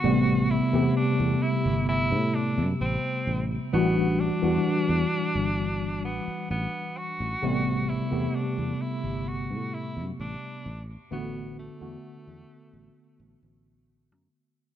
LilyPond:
<<
  \new Staff \with { instrumentName = "Tenor saxophone" } { \time 4/4 \key a \dorian \tempo 4 = 65 fis'8 e'8 d'8 e'8 e'8 d'8 c'8 r8 | b8 d'2 b8 b8 fis'8~ | fis'8 e'8 d'8 e'8 fis'8 e'8 d'8 r8 | b8 a2 r4. | }
  \new Staff \with { instrumentName = "Tine electric piano" } { \time 4/4 \key a \dorian <c g a b>8. <c a b g'>16 r2. | <e g d' fis'>8. <e g d' fis'>16 r2. | <c g a b>8. <c a b g'>16 r2. | <d a b fis'>8. <d a b fis'>16 r2. | }
  \new Staff \with { instrumentName = "Fingered electric bass" } { \clef bass \time 4/4 \key a \dorian a,,8 r16 e,16 r16 e,16 r16 g,,8 a,8 fis,16 a,,16 r16 a,,16 r16 | a,,8 r16 e,16 r16 e,16 r16 g,,8. a,,16 r16 a,,16 r8 a,,16 | a,,8 r16 e,16 r16 e,16 r16 g,,8 a,8 fis,16 a,,16 r16 a,,16 r16 | a,,8 r16 e,16 r16 e,16 r16 a,,16 r16 a,,16 a,,8. fis,16 r8 | }
>>